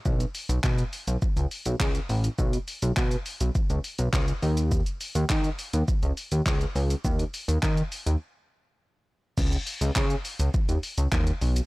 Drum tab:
CC |----------------|----------------|----------------|----------------|
HH |-xox-xox-xox-xox|-xox-xox-xox-xox|-xox-xox-xox-xox|-xox-xox--------|
SH |xxxxxxxxxxxxxxxx|xxxxxxxxxxxxxxxx|xxxxxxxxxxxxxxxx|xxxxxxxx--------|
CP |----x-------x---|----x-------x---|----x-------x---|----x-----------|
BD |o---o---o---o---|o---o---o---o---|o---o---o---o---|o---o-----------|

CC |x---------------|
HH |-xox-xox-xox-xox|
SH |xxxxxxxxxxxxxxxx|
CP |----x-------x---|
BD |o---o---o---o---|